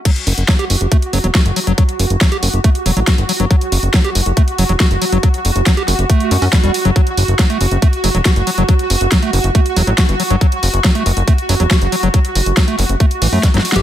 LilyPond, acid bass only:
\new Staff \with { instrumentName = "Acid bass" } { \clef bass \time 4/4 \key fis \phrygian \tempo 4 = 139 fis16 r8. fis16 g'16 r8 a16 r16 fis16 fis16 fis'16 r16 fis16 fis16 | fis16 r8. fis16 g'16 r8 a16 r16 fis16 fis16 fis'16 r16 fis16 fis16 | fis16 r8. fis16 g'16 r8 a16 r16 fis16 fis16 fis'16 r16 fis16 fis16 | fis16 r8. fis16 g'16 r8 a8 fis16 cis'16 g16 g16 r16 fis16 |
fis16 r8. fis16 a16 r8 a16 r16 fis16 fis16 fis'16 r16 fis16 fis16 | fis16 r8. fis16 a16 r8 a16 r16 fis16 fis16 fis'16 r16 fis16 fis16 | fis16 r8. fis16 a16 r8 a16 r16 fis16 fis16 fis'16 r16 fis16 fis16 | fis16 r8. fis16 a16 r8 a16 r16 e16 a16 fis16 fis16 r16 g'16 | }